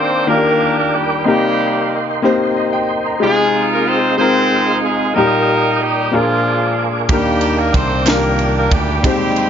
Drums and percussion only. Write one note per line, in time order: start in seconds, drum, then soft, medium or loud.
7.09 kick loud
7.09 ride medium
7.41 ride soft
7.74 kick medium
7.74 ride medium
8.06 snare loud
8.06 clap medium
8.06 ride medium
8.39 ride soft
8.71 kick medium
8.71 ride medium
9.04 kick loud
9.04 ride medium
9.36 ride soft